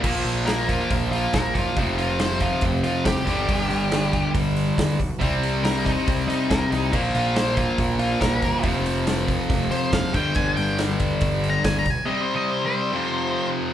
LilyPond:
<<
  \new Staff \with { instrumentName = "Lead electric guitar" } { \time 4/4 \key bes \lydian \tempo 4 = 140 r4 bes'8 f'8 r8 f'8 bes'8 f'8 | r8 f'8 c''8 f'8 r8 f'8 g'4~ | g'2 r2 | r4 bes'8 ees'8 r8 ees'8 bes'8 ees'8 |
r8 f'8 c''8 f'8 r8 f'8 bes'4 | r2 r8 c''8 f''8 g''8 | aes''8 g''8 r4 \tuplet 3/2 { r4 bes''8 aes''8 bes''8 aes''8 } | \tuplet 3/2 { ees''8 c''8 ees''8 c''8 c''4~ } c''4. r8 | }
  \new Staff \with { instrumentName = "Distorted electric guitar" } { \clef bass \time 4/4 \key bes \lydian <bes, f bes>1 | <f, c f>2.~ <f, c f>8 <g, d g>8~ | <g, d g>2.~ <g, d g>8 r8 | <c g c'>1 |
<bes, f bes>1 | <f, c f>2.~ <f, c f>8 <g, d g>8~ | <g, d g>2.~ <g, d g>8 r8 | <c g c'>2 <f, c f>2 | }
  \new Staff \with { instrumentName = "Picked electric bass" } { \clef bass \time 4/4 \key bes \lydian bes,,8 bes,,4. bes,,4 bes,,8 ges,,16 r16 | f,,2 f,,8 r8 f,,16 r16 g,,8 | g,,8 g,,4. g,,4 g,,8 b,,16 r16 | c,2 c,8 r8 c,16 r16 c,8 |
bes,,8 bes,,4. bes,,4 bes,,8 g,,16 r16 | f,,2 f,,8 r8 ges,,16 r16 g,,8 | g,,8 g,,4. g,,4 g,,8 b,,16 r16 | r1 | }
  \new DrumStaff \with { instrumentName = "Drums" } \drummode { \time 4/4 <cymc bd>8 hho8 <hho sn>8 <hho bd>8 <hho bd>8 hho8 <hho bd sn>8 <hho bd sn>8 | <hho bd>8 hho8 <hho sn>8 <hho bd>8 <hho bd>8 hho8 <hho bd sn>8 <hho bd sn>8 | <hho bd>8 hho8 <hho sn>16 sn16 <hho bd>8 <hho bd>8 hho8 <hho bd sn>8 <hho bd>8 | <hho bd>8 hho8 <hho sn>16 sn16 <hho bd>8 <hho bd>8 hho8 <hho bd sn>8 <hho sn>8 |
<cymc bd>8 hho8 <hho sn>16 sn16 <hho bd>8 <hho bd>8 hho8 <hho bd sn>8 <hho bd>8 | <hho bd>8 hho8 <hho sn>8 <hho bd>8 <hho bd>8 hho8 <hho bd sn>8 <hho bd sn>8 | <hho bd>8 hho8 <hho sn>8 <hho bd>8 <hho bd>8 hho8 <hho bd sn>8 <hho bd>8 | r4 r4 r4 r4 | }
>>